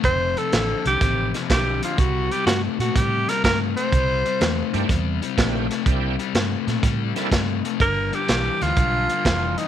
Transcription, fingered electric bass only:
X:1
M:4/4
L:1/8
Q:"Swing" 1/4=124
K:Cmix
V:1 name="Fingered electric bass" clef=bass
F,,,2 A,,, C,, A,,,2 =B,,,2 | C,,2 G,, B,, A,,2 G,,2 | C,,2 E,, G,, E,,2 B,,,2 | C,,2 G,, B,, A,,2 G,,2 |
G,,,2 =B,,, D,, B,,,2 F,,,2 |]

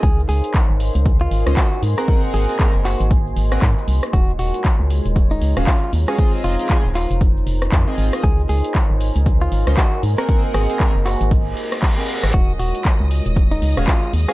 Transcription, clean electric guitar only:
X:1
M:4/4
L:1/16
Q:"Swing 16ths" 1/4=117
K:Ebdor
V:1 name="Clean electric guitar"
A z A2 z4 z F2 z G2 z B- | B z A2 z2 G2 z8 | G z G2 z4 z E2 z F2 z A- | A z F2 z2 F2 z8 |
A z A2 z4 z F2 z G2 z B- | B z A2 z2 G2 z8 | G z G2 z4 z E2 z F2 z A |]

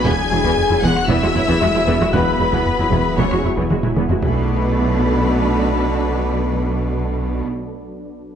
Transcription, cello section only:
X:1
M:4/4
L:1/16
Q:1/4=115
K:Bdor
V:1 name="Cello section" clef=bass
E,, z E,, E,, z E,, E,, z E,, E,, E,, E,, E,, E,, E,, E,, | E,, z E,, E,, z E,, E,, z E,, E,, E,, E,, E,, E,, E,, E,, | B,,16- | B,,16 |]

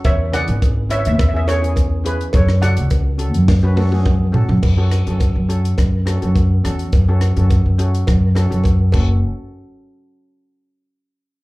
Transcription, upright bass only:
X:1
M:4/4
L:1/16
Q:1/4=105
K:F#m
V:1 name="Upright bass" clef=bass
E,,3 G,,,4 E,,8 z | F,,3 C,,4 F,,6- F,, G,, F,, | F,,3 F,,2 F,,3 F,,3 F,,3 E,,2 | F,,3 F,,2 F,,3 F,,3 F,,3 F,,,2 |
z16 |]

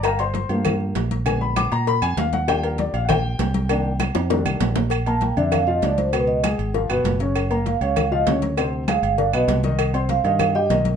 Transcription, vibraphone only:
X:1
M:4/4
L:1/8
Q:1/4=197
K:Bb
V:1 name="Vibraphone"
z8 | z8 | z8 | z8 |
z a g =e f _e d c | _c e z6 | z2 f3 e z2 | z2 f3 e z2 |
z2 f3 e z2 |]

